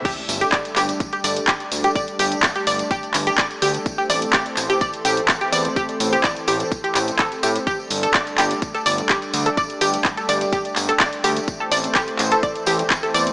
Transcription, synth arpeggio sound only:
\new Staff \with { instrumentName = "Synth arpeggio sound" } { \time 4/4 \key a \phrygian \tempo 4 = 126 <g' g''>16 r8 <g' g''>16 <d'' d'''>16 r16 <g' g''>16 r8 <g' g''>16 <d'' d'''>16 r16 <g' g''>16 r8 <g' g''>16 | <d'' d'''>16 r16 <g' g''>16 r8 <g' g''>16 <d'' d'''>16 r16 <g' g''>16 r8 <g' g''>16 <d'' d'''>16 r16 <g' g''>16 r16 | r16 <g' g''>16 <d'' d'''>16 r16 <g' g''>16 r8 <g' g''>16 <d'' d'''>16 r16 <g' g''>16 r8 <g' g''>16 <d'' d'''>16 r16 | <g' g''>16 r8 <g' g''>16 <d'' d'''>16 r16 <g' g''>16 r8 <g' g''>16 <g' g''>16 r16 <a' a''>16 r16 <g' g''>16 r16 |
<g' g''>16 r8 <a' a''>16 <d'' d'''>16 r16 <g' g''>16 r8 <a' a''>16 <d'' d'''>16 r16 <g' g''>16 r8 <a' a''>16 | <d'' d'''>16 r16 <g' g''>16 r8 <a' a''>16 <d'' d'''>16 r16 <g' g''>16 r8 <a' a''>16 <d'' d'''>16 r16 <g' g''>16 r16 | r16 <a' a''>16 <d'' d'''>16 r16 <g' g''>16 r8 <a' a''>16 <d'' d'''>16 r16 <g' g''>16 r8 <a' a''>16 <d'' d'''>16 r16 | }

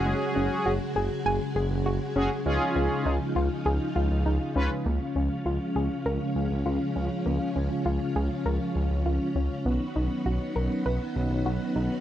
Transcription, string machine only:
\new Staff \with { instrumentName = "String machine" } { \clef bass \time 4/4 \key des \mixolydian \tempo 4 = 100 << { <ges ges' aes'>1 | <f ees' f'>1 | <f des' f'>1~ | <f des' f'>1 |
<ges ces' ges'>1 | } \\ { <des aes>1~ | <des aes>1 | <des aes>1~ | <des aes>1 |
ees1 | } >> }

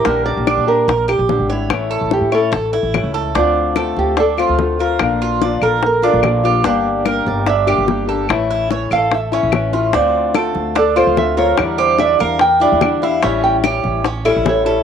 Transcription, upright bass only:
\new Staff \with { instrumentName = "Upright bass" } { \clef bass \time 4/4 \key d \minor \tempo 4 = 146 bes,,8. bes,,8 bes,8. bes,,8. bes,,8 gis,,8. | a,,8. a,,8 a,8. a,,8. a,,8 cis,8. | d,4. d,4~ d,16 d,4~ d,16 | bes,,4. bes,,4~ bes,,16 bes,,4~ bes,,16 |
g,,4. g,,4~ g,,16 g,,4~ g,,16 | a,,4. a,,4~ a,,16 a,,4~ a,,16 | d,4. d,4~ d,16 d,4~ d,16 | e,4. e,4~ e,16 e,4~ e,16 |
a,,4. a,,4~ a,,16 a,,4~ a,,16 | }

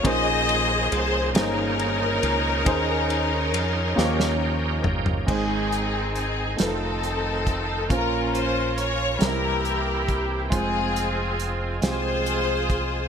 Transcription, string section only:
\new Staff \with { instrumentName = "String section" } { \time 6/8 \key aes \major \tempo 4. = 46 << { ees''4 c''8 bes'4.~ | bes'2~ bes'8 r8 | aes'4 aes'8 a'4. | bes'8 c''8 des''8 bes'4 r8 |
aes'4 r8 c''4. | } \\ { <aes' c''>4. <des' ees'>4.~ | <des' ees'>2~ <des' ees'>8 r8 | <c' ees'>4. <c' ees'>4. | <des' f'>4. <e' g'>4. |
<c' f'>4. <f' aes'>4. | } >> }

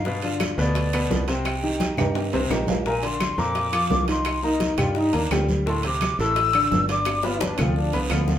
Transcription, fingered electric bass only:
\new Staff \with { instrumentName = "Fingered electric bass" } { \clef bass \time 4/4 \key c \minor \tempo 4 = 171 g,4. d,4. c,4~ | c,4. g,4 c,8 bes,,4~ | bes,,4. f,4. c,4~ | c,4. g,4 ees,8 d,4~ |
d,4. a,,4. g,,4~ | g,,4. d,4 c,8 d,4 | }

